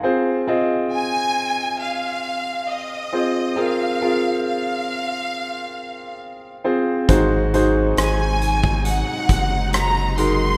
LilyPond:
<<
  \new Staff \with { instrumentName = "Violin section" } { \time 4/4 \key f \phrygian \tempo 4 = 68 r4 aes''4 f''4 ees''4 | f''4 f''2 r4 | r4 aes''4 ges''4 bes''8 c'''8 | }
  \new Staff \with { instrumentName = "Grand piano" } { \time 4/4 \key f \phrygian << { <f'' aes''>16 r2. r8. | r1 | aes,4. r2 r8 | } \\ { <c' f' aes' c''>8 <c' f' aes' ees''>2 r4 <c' f' aes' c''>8 | <c' f' aes' bes'>8 <c' f' aes' bes'>2 r4 <c' f' aes' c''>8 | <ees' ges' aes' c''>8 <ees' ges' aes' c''>2 r4 <ees' ges' aes' bes'>8 | } >> }
  \new Staff \with { instrumentName = "String section" } { \clef bass \time 4/4 \key f \phrygian r1 | r1 | <c ges aes ees'>1 | }
  \new Staff \with { instrumentName = "Sub bass" } { \clef bass \time 4/4 \key f \phrygian r1 | r1 | aes,,4 aes,,4~ aes,,16 r16 ges,,4. | }
  \new DrumStaff \with { instrumentName = "Drums" } \drummode { \time 4/4 r4 r4 r4 r4 | r4 r4 r4 r4 | <hh bd>8 hh8 <hh ss>8 hh16 bd16 hh8 <hh bd>8 <hh ss>8 hh8 | }
>>